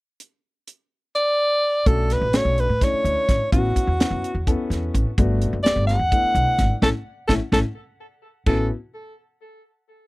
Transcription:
0.20 closed hi-hat
0.68 closed hi-hat
1.15 alto saxophone D5, closed hi-hat
1.86 upright bass B1, grand piano A3 C#4 D4 F#4, alto saxophone A4, kick, closed hi-hat
2.10 alto saxophone B4, snare, closed hi-hat
2.21 upright bass A1
2.33 grand piano A3 C#4 D4 F#4, alto saxophone C#5, snare, closed hi-hat
2.45 upright bass B1
2.58 alto saxophone B4, closed hi-hat
2.69 upright bass A2
2.81 grand piano A3 C#4 D4 E4, alto saxophone C#5, kick, snare, closed hi-hat
2.93 muted upright bass stroke
3.04 upright bass D2, closed hi-hat
3.29 upright bass A1, kick, snare, closed hi-hat
3.52 upright bass A1, grand piano B3 C#4 E4 F#4, alto saxophone F#4, kick, closed hi-hat
3.76 muted upright bass stroke, kick, closed hi-hat
3.87 upright bass E2
3.99 grand piano B3 C#4 E4 F#4, snare, closed hi-hat
4.11 upright bass F#2
4.24 closed hi-hat
4.34 upright bass E2
4.47 grand piano B3 C#4 E4 A4, kick, closed hi-hat
4.70 upright bass E2, snare, closed hi-hat
4.94 upright bass A1, kick, closed hi-hat
5.18 upright bass G1, grand piano A3 B3 D4 F#4, kick, closed hi-hat
5.42 closed hi-hat
5.53 upright bass F#1
5.63 grand piano A3 B3 D4 G4, alto saxophone D5, snare, closed hi-hat
5.76 upright bass G1
5.87 alto saxophone F#5, snare, closed hi-hat
5.99 upright bass E2
6.12 grand piano A3 B3 D4 E4, kick, closed hi-hat
6.24 muted upright bass stroke
6.35 upright bass B1, closed hi-hat
6.58 upright bass G#1, kick, snare, closed hi-hat
6.82 upright bass A1, grand piano A3 C#4 E4, alto saxophone A4, kick, snare
7.27 upright bass A1, grand piano A3 C#4 E4, alto saxophone A4, kick, snare
7.52 upright bass A1, grand piano A3 C#4 E4, alto saxophone A4, kick, snare
8.46 upright bass A1, grand piano B3 C#4 E4 F#4, alto saxophone A4, kick, crash

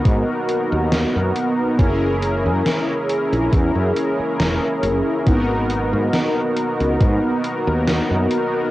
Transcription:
Already playing: analog polysynth B3 D#4 F#4 A#4
0.05 fretless electric bass G#2, kick, closed hi-hat
0.49 closed hi-hat
0.72 fretless electric bass D#2
0.92 snare, closed hi-hat
1.16 fretless electric bass F#2
1.36 closed hi-hat
1.77 fretless electric bass F#1, analog polysynth C#4 E4 G#4 A#4, kick, closed hi-hat
2.22 closed hi-hat
2.46 fretless electric bass F#2
2.66 snare, closed hi-hat
3.10 closed hi-hat
3.33 fretless electric bass A#1, closed hi-hat
3.53 fretless electric bass E2, kick, closed hi-hat
3.75 fretless electric bass F#2
3.96 closed hi-hat
4.19 muted fretless electric bass stroke
4.40 fretless electric bass E1, snare, closed hi-hat
4.83 fretless electric bass F#1, closed hi-hat
5.25 fretless electric bass G#1, analog polysynth B3 D#4 F#4 A#4, kick, closed hi-hat
5.70 closed hi-hat
5.93 fretless electric bass G#2
6.13 snare, closed hi-hat
6.57 closed hi-hat
6.80 fretless electric bass C#2, closed hi-hat
7.00 fretless electric bass G#2, kick, closed hi-hat
7.44 closed hi-hat
7.67 fretless electric bass D#2
7.88 snare, closed hi-hat
8.11 fretless electric bass F#2
8.31 closed hi-hat

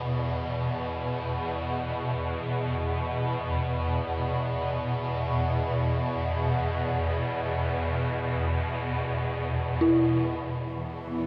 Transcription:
Already playing: synth drone E2 B2, synth bell E4, singing bowl B4
9.81 synth bell E4
10.71 synth drone E2 B2, cello section E3
11.06 cello section B3

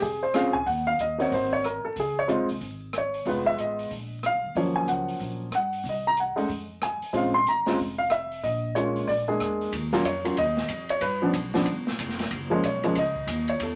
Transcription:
0.02 upright bass F1, grand piano G#4, kick, open hi-hat
0.23 grand piano C5
0.34 grand piano C4 C#4 F4 G#4 F5, cross-stick, snare, closed hi-hat
0.53 grand piano G#5, kick
0.66 upright bass D#2, grand piano F#5, kick, open hi-hat
0.87 grand piano F5
0.98 upright bass D#2, grand piano D#5, closed hi-hat
1.18 grand piano A#3 C4 D#4 F#4 C#5, open hi-hat
1.31 upright bass G#1, grand piano C5, kick, open hi-hat
1.53 grand piano C#5
1.64 grand piano A#4, cross-stick, closed hi-hat
1.84 grand piano A4, muted upright bass stroke
1.96 upright bass C#2, grand piano G#4, kick, open hi-hat
2.19 grand piano C#5
2.28 grand piano G#3 C4 D#4 F4, closed hi-hat
2.40 upright bass F2
2.49 upright bass C2, open hi-hat
2.61 upright bass G#1, kick, open hi-hat
2.93 cross-stick, closed hi-hat
2.98 grand piano C#5
3.14 open hi-hat
3.25 upright bass F1, grand piano G#3 B3 D#4 F4 B4, kick, open hi-hat
3.46 grand piano E5
3.58 upright bass A1, grand piano D#5, closed hi-hat
3.79 open hi-hat
3.91 upright bass A#1, kick, open hi-hat
4.23 grand piano F5, cross-stick, closed hi-hat
4.33 upright bass B1
4.44 upright bass D2
4.55 upright bass D#2, grand piano F3 F#3 A#3 C#4 C#5, kick, open hi-hat
4.76 grand piano G#5
4.86 upright bass C#2, grand piano F#5, closed hi-hat
5.08 open hi-hat
5.19 upright bass A#1, kick, open hi-hat
5.51 upright bass G2, cross-stick, closed hi-hat
5.55 grand piano F#5
5.73 open hi-hat
5.84 upright bass C2, kick, open hi-hat
5.89 grand piano D#5
6.07 grand piano A#5
6.17 grand piano F#5, closed hi-hat
6.36 grand piano G#3 A3 C#4 D#4, muted upright bass stroke, open hi-hat
6.48 upright bass F2, kick, open hi-hat
6.82 grand piano G#5, cross-stick, closed hi-hat
7.00 muted upright bass stroke, open hi-hat
7.13 upright bass A#1, grand piano G#3 C4 C#4 F4, kick, open hi-hat
7.17 grand piano F5
7.34 grand piano C6
7.45 upright bass G#1, grand piano A#5, closed hi-hat
7.66 grand piano G#3 C4 C#4 F4, snare
7.78 upright bass F1, kick, open hi-hat
7.98 grand piano F5
8.10 grand piano E5, cross-stick, closed hi-hat
8.32 open hi-hat
8.43 upright bass A#1, grand piano D#5, kick, open hi-hat
8.75 grand piano G#3 A#3 C#4 F4 C#5, closed hi-hat
8.96 open hi-hat
9.07 upright bass A#1, grand piano D5, kick, open hi-hat
9.28 grand piano G#3 A#3 D4 G#4
9.40 upright bass E2, cross-stick, closed hi-hat
9.61 open hi-hat
9.72 upright bass D#2, kick, ride
9.93 grand piano F#3 A#3 C#4 F4, snare
10.04 upright bass F2, grand piano C#5, kick, hi-hat pedal, ride
10.24 grand piano F#3 A#3 C#4 F4, ride
10.37 upright bass D#2, grand piano D#5, kick, ride
10.57 snare
10.68 upright bass F2, kick, hi-hat pedal, ride
10.89 grand piano C#5, ride
11.01 upright bass G2, grand piano B4, kick, ride
11.22 grand piano F3 B3 C#4 D4
11.33 upright bass B1, kick, hi-hat pedal, ride
11.54 grand piano F3 B3 C#4 D4, snare
11.66 upright bass G1, kick, ride
11.87 snare
11.98 upright bass F1, kick, hi-hat pedal, ride
12.09 snare
12.19 snare, ride
12.31 upright bass F#1, kick, ride
12.50 grand piano F3 G#3 A#3 C#4
12.63 upright bass B1, grand piano C#5, kick, hi-hat pedal, ride
12.83 grand piano F3 G#3 A#3 C#4, ride
12.95 upright bass C#2, grand piano D#5, kick, ride
13.15 kick
13.27 upright bass D#2, kick, hi-hat pedal, ride
13.48 grand piano C#5, ride
13.60 upright bass E2, grand piano A4, kick, ride

